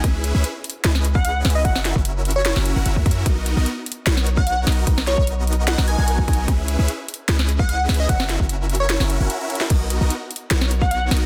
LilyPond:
<<
  \new Staff \with { instrumentName = "Digital synth lead" } { \time 4/4 \key b \major \tempo 4 = 149 r2 r8. fis''16 fis''16 r8 dis''16 | fis''16 r4. cis''16 cis''16 r4. r16 | r2 r8. fis''16 fis''16 r8. | r8 cis''16 cis''16 r4 fis''16 r16 gis''4. |
r2 r8. fis''16 fis''16 r8 dis''16 | fis''16 r4. cis''16 cis''16 r4. r16 | r2 r8. fis''16 fis''16 r8. | }
  \new Staff \with { instrumentName = "Supersaw synth" } { \time 4/4 \key b \major <cis' e' gis' b' e''>8. <cis' e' gis' b' e''>16 r4 <cis' e' gis' b' dis''>4. <cis' e' gis' b' e''>8 | <cis' e' fis' ais' e''>8. <cis' e' fis' ais' e''>4. <cis' e' fis' ais' e''>8 <cis' e' fis' ais' fis''>16 <cis' e' fis' ais' e''>16 <cis' e' fis' ais' e''>8. | <b dis' ais' dis''>8. <b dis' fis' ais' dis''>16 r4 <b dis' fis' ais' cis''>4. <b dis' fis' ais' dis''>8 | <b dis' fis' ais' dis''>8. <b dis' fis' ais' dis''>4. <b dis' fis' ais' dis''>8 <b dis' fis' ais' fis''>8. <b dis' fis' ais' dis''>8 |
<cis' e' gis' b' e''>8. <cis' e' gis' b' e''>16 r4 <cis' e' gis' b' dis''>4. <cis' e' gis' b' e''>8 | <cis' fis'>8. <cis' e' fis' ais' e''>4. <cis' e' fis' ais' e''>8 <cis' e' fis' ais' fis''>16 <cis' e' fis' ais' e''>16 <cis' e' fis' ais' e''>8. | <b dis' fis' ais' dis''>8. <b dis' fis' ais' dis''>16 r4 <b dis' fis' ais' cis''>4. <b dis' fis' ais' dis''>8 | }
  \new Staff \with { instrumentName = "808-style bass" } { \clef bass \time 4/4 \key b \major cis,8. cis,16 r4 cis,4. cis,8 | fis,,8. fis,,4. fis,,8 fis,,16 fis,,16 fis,8. | b,,8. b,,16 r4 b,,4. b,,8 | b,,8. b,,4. b,,8 b,,8. b,,8 |
cis,8. cis,16 r4 cis,4. cis,8 | fis,,8. fis,,4. fis,,8 fis,,16 r4 | b,,8. b,,16 r4 b,,4. b,,8 | }
  \new DrumStaff \with { instrumentName = "Drums" } \drummode { \time 4/4 <hh bd>8 hh8 hh8 hh32 hh16. <hh sn>16 sn16 hh16 bd16 hh8 <hh sn>32 hh16. | <hh bd>16 sn16 <hh sn>16 bd16 hh8 hh32 hh16. <hh sn>16 sn16 hh8 hh16 bd16 <hh bd>32 hh16. | <hh bd>8 hh8 hh8 hh32 hh16. <hh sn>16 sn16 hh16 bd16 hh8 <hh sn>32 hh16. | <hh bd>16 sn16 <hh sn>16 bd16 hh8 hh32 hh16. <hh sn>16 sn16 hh8 hh16 bd16 <hh bd>32 hh16. |
<hh bd>8 hh8 hh8 hh32 hh16. <hh sn>16 sn16 hh16 bd16 hh8 <hh sn>32 hh16. | <hh bd>16 sn16 <hh sn>16 bd16 hh8 hh32 hh16. <hh sn>16 sn16 hh8 hh8 hh32 hh32 sn16 | <cymc hh bd>8 hh8 hh8 hh32 hh16. <hh sn>16 sn16 hh16 bd16 hh8 <hh sn>32 hh16. | }
>>